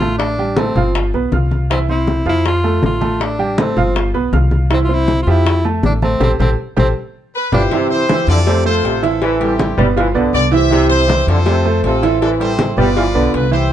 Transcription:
Already playing: upright bass A1, tenor saxophone F4
0.00 grand piano A3 A4 A5, high bongo, high conga
0.18 tenor saxophone D4, high bongo, high conga
0.38 grand piano G3 G4 G5, high conga
0.57 grand piano A3 A4 A5, tenor saxophone C4, high bongo, high conga
0.75 upright bass G1, grand piano F3 F4 F5, high bongo, high conga, low conga
0.95 high bongo, high conga
1.13 upright bass B1, grand piano B3 B4 B5, high bongo, high conga
1.32 upright bass C2, grand piano F4 F5 F6, high bongo, low bongo, high conga
1.51 high bongo, high conga
1.70 grand piano E3 E4 E5, tenor saxophone C4, high bongo, high conga
1.89 grand piano C4 C5 C6, tenor saxophone E4, high conga
2.07 high bongo, high conga
2.26 upright bass F2, grand piano F3 F4 F5, tenor saxophone E4, high bongo, high conga
2.45 tenor saxophone F4, high bongo, high conga
2.64 grand piano A3 A4 A5, high bongo, high conga
2.83 upright bass A1, tenor saxophone F4, high bongo, low bongo, high conga
3.01 grand piano A3 A4 A5, high bongo, high conga
3.20 tenor saxophone D4, high bongo, high conga
3.39 grand piano G3 G4 G5, high conga
3.58 grand piano A3 A4 A5, tenor saxophone C4, high bongo, high conga
3.76 upright bass G1, grand piano F3 F4 F5, high bongo, high conga, low conga
3.96 high bongo, high conga
4.14 upright bass B1, grand piano B3 B4 B5, high bongo, high conga
4.33 upright bass C2, grand piano F4 F5 F6, high bongo, low bongo, high conga
4.51 high bongo, high conga
4.70 grand piano E3 E4 E5, tenor saxophone C4, high bongo, high conga
4.85 tenor saxophone F4
4.89 grand piano C4 C5 C6, high conga
4.94 tenor saxophone E4
5.08 high bongo, high conga
5.23 upright bass F2, tenor saxophone F4
5.27 grand piano F3 G4 E5, tenor saxophone E4, high bongo, high conga
5.45 high bongo, high conga
5.64 grand piano A3 A4 A5, high bongo, high conga
5.83 upright bass A1, tenor saxophone D4, high bongo, low bongo, high conga
6.02 grand piano A3 A4 A5, tenor saxophone C4, high bongo, high conga
6.20 upright bass A1, tenor saxophone C4, grand piano G4 A4 C5, low bongo, low conga
6.39 upright bass A1, tenor saxophone C4, grand piano G4 A4 C5, low bongo, low conga
6.77 upright bass A1, tenor saxophone C4, grand piano G4 A4 C5, low bongo, low conga
7.36 horn section B4
7.52 upright bass G1, tenor saxophone D4, horn section E4 G4 C5, grand piano F4 G4 B4, low bongo, low conga
7.71 trombone section C3, grand piano E3 E4 E5, cowbell, high conga
7.90 horn section E4 G4 C5, high conga
8.09 grand piano E3 E4 E5, cowbell, high conga
8.27 upright bass F2, trombone section D3, horn section F4 A4 D5, cowbell, high conga
8.47 trombone section C3, grand piano A3 A4 C5, cowbell, high conga
8.65 grand piano A3 A4 C5, horn section F4 A4 C5, high conga
8.83 upright bass A1, trombone section C3, cowbell, high conga
9.03 grand piano E3 E4 E5, horn section C4 E4 A4, cowbell
9.22 trombone section E3, cowbell, high conga
9.40 grand piano G3 G4 A4, horn section C4 E4 G4, cowbell, high conga
9.59 cowbell, high conga
9.78 upright bass G1, trombone section G3, grand piano B3 B4 D5, high conga, low conga
9.96 trombone section E3, grand piano F3 F4 F5, cowbell, high conga
10.14 upright bass B1, trombone section D3, grand piano B3 B4 D5, high conga
10.33 upright bass C2, horn section D5, cowbell, high conga
10.52 grand piano E3 E4 E5, horn section G4 C5 E5, high conga
10.70 trombone section C3, grand piano E3 E4 E5, cowbell, high conga
10.90 horn section E4 G4 C5, high conga
11.07 grand piano E3 E4 E5, cowbell, high conga
11.27 upright bass F2, trombone section D3, horn section F4 A4 C5, cowbell, high conga
11.46 trombone section C3, grand piano A3 A4 C5, cowbell, high conga
11.65 grand piano A3 A4 C5, high conga
11.83 upright bass A1, trombone section C3, horn section C4 F4 A4, cowbell, high conga
12.02 grand piano E3 E4 E5, cowbell
12.22 trombone section E3, horn section C4 E4 A4, cowbell, high conga
12.40 grand piano G3 G4 A4, horn section E4 G4 C5, cowbell, high conga
12.59 cowbell, high conga
12.77 upright bass G1, trombone section G3, grand piano B3 B4 D5, horn section F4 B4 D5, high conga, low conga
12.96 trombone section E3, grand piano F3 F4 F5, cowbell, high conga
13.15 upright bass B1, trombone section D3, grand piano B3 B4 D5, high conga
13.34 upright bass C2, horn section B4, cowbell, high conga
13.51 grand piano E3 E4 E5, horn section E4 G4 C5, high conga

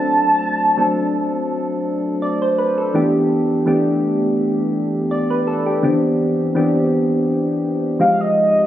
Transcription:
Already playing: synth keys F#3 A3 C4 D4 A4, soft synth lead A5
0.77 synth keys F#3 A3 C4 D4 A4
2.22 synth keys D5
2.42 synth keys C5
2.58 synth keys B4
2.78 synth keys A4
2.94 synth keys E3 A3 B3 D4 G4
3.66 synth keys E3 A3 B3 D4 G4
5.11 synth keys D5
5.30 synth keys B4
5.47 synth keys A4
5.66 synth keys G4
5.82 synth keys D3 B3 C4 D4 G4
5.89 synth keys E3
6.55 synth keys E3 B3 C4 D4 G4
7.99 synth keys F3 G#3 C4 D#4 G4, soft synth lead F5
8.21 soft synth lead D#5
8.37 soft synth lead D#5

